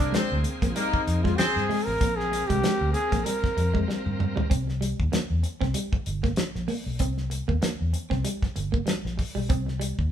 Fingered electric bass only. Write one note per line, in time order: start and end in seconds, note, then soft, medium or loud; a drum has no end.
0.00 0.11 C2 medium
0.14 muted fingered electric bass stroke soft
0.32 0.43 D2 medium
0.62 0.74 A#1 medium
0.94 muted fingered electric bass stroke medium
1.07 1.34 F2 medium
1.39 muted fingered electric bass stroke soft
1.56 1.68 G2 loud
1.87 1.99 A1 medium
2.01 2.42 A#1 loud
2.50 2.61 C2 medium
2.81 2.92 D2 medium
3.12 3.23 A#1 medium
3.44 muted fingered electric bass stroke soft
3.57 3.83 F2 medium
3.89 muted fingered electric bass stroke soft
4.06 4.32 G2 medium
4.51 4.92 C2 medium
4.99 5.11 D#2 loud
5.13 muted fingered electric bass stroke soft
5.30 5.42 E2 medium
5.61 5.73 C2 medium
5.93 muted fingered electric bass stroke soft
6.07 6.33 G1 medium
6.38 muted fingered electric bass stroke soft
6.55 6.67 A#1 loud
6.86 7.00 B1 medium
7.00 7.41 C2 medium
7.49 7.61 D#2 medium
7.63 muted fingered electric bass stroke soft
7.81 7.92 E2 medium
8.11 8.23 C2 medium
8.43 muted fingered electric bass stroke soft
8.56 8.83 G1 medium
8.88 muted fingered electric bass stroke soft
9.05 9.16 A#1 loud
9.35 9.50 B1 medium
9.50 9.91 C2 medium
9.99 10.10 D#2 medium